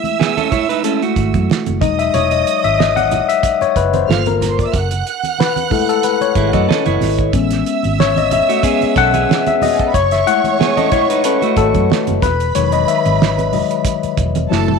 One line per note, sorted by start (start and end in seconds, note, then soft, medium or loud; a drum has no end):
0.00 0.83 G#3 medium
0.00 0.84 A3 soft
0.00 0.84 E4 medium
0.00 1.45 E5 medium
0.00 1.45 E6 loud
0.00 high conga soft
0.05 closed hi-hat soft
0.19 0.36 B3 medium
0.19 0.36 G#4 medium
0.19 snare loud
0.19 muted conga soft
0.37 0.51 C#4 medium
0.37 0.51 A4 medium
0.37 closed hi-hat soft
0.37 high conga medium
0.52 0.68 E4 medium
0.52 0.68 C#5 medium
0.52 kick medium
0.52 closed hi-hat medium
0.52 low conga medium
0.69 0.84 D#4 medium
0.69 0.83 B4 medium
0.69 closed hi-hat medium
0.83 1.13 G#3 soft
0.83 1.13 A3 soft
0.83 1.01 C#4 medium
0.83 1.13 E4 soft
0.83 1.01 A4 medium
0.83 closed hi-hat loud
1.02 1.78 A3 soft
1.02 1.78 F#4 medium
1.02 closed hi-hat soft
1.16 1.31 G#1 medium
1.16 kick medium
1.16 closed hi-hat medium
1.34 1.47 F#2 medium
1.34 kick medium
1.34 closed hi-hat soft
1.34 high conga medium
1.50 snare loud
1.50 muted conga soft
1.66 1.82 F#1 medium
1.66 closed hi-hat soft
1.66 muted conga soft
1.66 high conga medium
1.81 2.09 E1 medium
1.81 2.74 F#3 medium
1.81 2.75 G#3 medium
1.81 2.75 D#4 medium
1.81 1.99 D#5 medium
1.81 3.72 D#5 medium
1.81 3.72 D#6 loud
1.81 kick loud
1.81 closed hi-hat medium
1.81 high conga medium
1.81 low conga medium
1.99 2.13 E5 medium
1.99 closed hi-hat soft
2.14 2.42 E1 loud
2.14 2.22 C#5 medium
2.14 closed hi-hat medium
2.14 muted conga soft
2.14 low conga medium
2.31 2.62 D#5 medium
2.31 closed hi-hat medium
2.31 muted conga soft
2.47 closed hi-hat medium
2.64 3.20 G#1 medium
2.64 2.79 E5 loud
2.64 closed hi-hat soft
2.64 high conga soft
2.79 2.97 D#5 loud
2.79 snare loud
2.96 3.30 F#5 loud
2.96 closed hi-hat soft
2.96 muted conga soft
2.96 high conga medium
3.11 closed hi-hat medium
3.11 low conga medium
3.29 3.62 E5 loud
3.29 closed hi-hat medium
3.43 kick medium
3.43 closed hi-hat loud
3.43 muted conga soft
3.61 3.75 C#5 medium
3.61 muted fingered electric bass stroke soft
3.61 closed hi-hat soft
3.61 muted conga soft
3.76 4.04 F#1 medium
3.76 3.94 B4 medium
3.76 kick medium
3.76 closed hi-hat medium
3.93 4.27 C5 medium
3.93 closed hi-hat soft
3.93 high conga medium
4.08 4.64 G1 loud
4.08 4.70 A#3 soft
4.08 4.71 F4 medium
4.08 4.70 A4 soft
4.08 4.34 F5 medium
4.08 4.34 F6 medium
4.08 snare loud
4.08 muted conga soft
4.26 4.87 A#4 medium
4.26 closed hi-hat medium
4.26 muted conga soft
4.26 high conga medium
4.41 4.50 A#4 medium
4.41 4.50 A#5 medium
4.41 snare soft
4.41 closed hi-hat medium
4.41 high conga medium
4.41 low conga medium
4.50 4.59 C5 medium
4.50 4.59 C6 medium
4.58 4.66 D5 medium
4.58 4.66 D6 medium
4.58 kick medium
4.58 closed hi-hat soft
4.66 4.73 E5 medium
4.66 4.73 E6 medium
4.74 5.01 F#1 loud
4.74 6.97 F#5 medium
4.74 6.98 F#6 medium
4.74 kick loud
4.74 closed hi-hat medium
4.74 muted conga soft
4.91 closed hi-hat medium
4.91 muted conga soft
5.07 closed hi-hat medium
5.23 closed hi-hat soft
5.23 high conga soft
5.39 5.73 B4 medium
5.39 snare loud
5.39 muted conga soft
5.56 closed hi-hat soft
5.56 muted conga soft
5.56 high conga medium
5.70 6.15 G#3 soft
5.70 6.15 A3 soft
5.70 6.15 E4 medium
5.70 5.88 A4 medium
5.70 kick medium
5.70 open hi-hat soft
5.70 low conga medium
5.89 6.04 A4 medium
5.89 closed hi-hat medium
6.03 6.22 B4 medium
6.03 closed hi-hat loud
6.03 muted conga soft
6.21 6.51 C#5 medium
6.21 closed hi-hat soft
6.21 muted conga soft
6.35 6.51 G#1 medium
6.35 6.53 G#3 soft
6.35 6.52 E4 medium
6.35 kick medium
6.35 closed hi-hat medium
6.53 6.67 F#2 medium
6.53 6.68 A3 medium
6.53 6.67 F#4 medium
6.53 6.84 D#5 medium
6.53 kick medium
6.53 closed hi-hat soft
6.53 high conga medium
6.69 6.86 C#4 medium
6.69 6.85 A4 medium
6.69 snare loud
6.69 muted conga soft
6.86 6.99 F#1 medium
6.86 7.31 E4 medium
6.86 7.31 C#5 medium
6.86 closed hi-hat medium
6.86 muted conga soft
6.86 high conga medium
7.01 7.29 G#1 medium
7.01 snare soft
7.01 open hi-hat medium
7.01 high conga medium
7.01 low conga medium
7.19 kick medium
7.19 closed hi-hat soft
7.33 7.61 A1 loud
7.33 7.77 G#3 medium
7.33 7.78 B3 medium
7.33 7.78 C#4 medium
7.33 9.52 E5 medium
7.33 9.52 E6 medium
7.33 kick loud
7.33 closed hi-hat medium
7.51 snare soft
7.51 closed hi-hat medium
7.51 muted conga soft
7.66 closed hi-hat medium
7.83 8.40 G#1 medium
7.83 closed hi-hat soft
7.83 high conga soft
7.98 8.17 C#5 medium
7.98 snare loud
7.98 muted conga soft
8.16 8.32 D#5 medium
8.16 closed hi-hat soft
8.16 muted conga soft
8.16 high conga medium
8.31 8.99 E5 medium
8.31 closed hi-hat medium
8.31 low conga medium
8.49 8.63 A3 soft
8.49 8.63 F#4 medium
8.49 closed hi-hat medium
8.63 8.93 G#3 soft
8.63 8.93 B3 soft
8.63 8.95 B3 medium
8.63 8.93 C#4 soft
8.63 8.95 G#4 medium
8.63 kick loud
8.63 closed hi-hat loud
8.81 muted fingered electric bass stroke soft
8.81 closed hi-hat soft
8.81 muted conga soft
8.96 9.24 B1 medium
8.96 9.14 C#4 medium
8.96 9.13 A4 medium
8.96 9.49 F#5 loud
8.96 kick medium
8.96 closed hi-hat medium
9.14 9.90 B3 medium
9.14 9.90 G#4 medium
9.14 closed hi-hat soft
9.14 high conga medium
9.29 snare loud
9.29 muted conga soft
9.46 9.62 E5 loud
9.46 closed hi-hat medium
9.46 muted conga soft
9.46 high conga medium
9.62 9.70 F#4 medium
9.62 9.95 D#5 loud
9.62 9.70 F#5 medium
9.62 open hi-hat medium
9.62 high conga medium
9.62 low conga medium
9.71 9.79 G#4 medium
9.71 9.79 G#5 medium
9.79 9.87 A4 medium
9.79 9.87 A5 medium
9.79 kick medium
9.79 closed hi-hat soft
9.86 9.94 B4 medium
9.86 9.94 B5 loud
9.94 10.22 F#1 loud
9.94 11.86 C#5 loud
9.94 10.12 C#5 medium
9.94 11.86 C#6 loud
9.94 kick loud
9.94 closed hi-hat medium
10.11 10.27 E5 medium
10.11 snare soft
10.11 closed hi-hat medium
10.11 muted conga soft
10.26 10.71 G#3 medium
10.26 10.71 A3 soft
10.26 10.71 E4 medium
10.26 10.74 F#5 medium
10.26 closed hi-hat medium
10.44 closed hi-hat soft
10.44 high conga soft
10.59 10.77 B3 medium
10.59 10.76 G#4 medium
10.59 snare loud
10.59 muted conga soft
10.77 10.92 C#4 medium
10.77 10.91 A4 medium
10.77 10.91 D#5 medium
10.77 closed hi-hat soft
10.77 high conga medium
10.91 11.09 E4 medium
10.91 11.08 C#5 medium
10.91 11.26 C#5 medium
10.91 kick medium
10.91 closed hi-hat medium
10.91 low conga medium
11.10 11.24 D#4 medium
11.10 11.24 B4 medium
11.10 closed hi-hat medium
11.24 11.42 C#4 medium
11.24 11.41 A4 medium
11.24 11.40 B4 medium
11.24 closed hi-hat loud
11.42 12.19 A3 medium
11.42 12.18 F#4 medium
11.42 closed hi-hat soft
11.42 muted conga soft
11.56 11.72 G#1 medium
11.56 12.24 A4 loud
11.56 kick medium
11.56 closed hi-hat medium
11.74 11.88 F#2 medium
11.74 kick medium
11.74 closed hi-hat soft
11.74 high conga medium
11.90 snare loud
11.90 muted conga soft
12.07 12.21 F#1 medium
12.07 closed hi-hat medium
12.07 muted conga soft
12.07 high conga medium
12.22 12.50 E1 loud
12.22 14.14 B4 medium
12.22 12.53 B4 medium
12.22 14.14 B5 loud
12.22 kick loud
12.22 snare soft
12.22 closed hi-hat medium
12.22 high conga medium
12.22 low conga medium
12.40 closed hi-hat soft
12.55 12.83 E1 loud
12.55 14.47 D#3 medium
12.55 13.51 F#3 medium
12.55 13.52 G#3 medium
12.55 12.73 C#5 medium
12.55 closed hi-hat loud
12.72 12.88 D#5 medium
12.72 closed hi-hat medium
12.72 muted conga soft
12.88 13.82 E5 medium
12.88 closed hi-hat medium
13.05 13.61 G#1 medium
13.05 closed hi-hat soft
13.05 high conga soft
13.22 snare loud
13.38 closed hi-hat soft
13.38 muted conga soft
13.38 high conga medium
13.52 13.82 F#3 soft
13.52 13.82 G#3 soft
13.52 13.82 D#5 medium
13.52 open hi-hat soft
13.52 low conga medium
13.71 closed hi-hat medium
13.85 kick medium
13.85 closed hi-hat loud
13.85 muted conga soft
14.03 muted fingered electric bass stroke soft
14.03 closed hi-hat soft
14.17 14.46 E1 medium
14.17 kick medium
14.17 closed hi-hat medium
14.35 closed hi-hat soft
14.35 high conga medium
14.50 14.79 F#1 loud
14.50 14.79 F#3 medium
14.50 14.79 A3 medium
14.50 14.79 E4 medium
14.50 14.79 A4 medium
14.50 14.79 A5 medium
14.50 snare medium
14.68 high tom medium
14.68 muted conga soft
14.68 high conga medium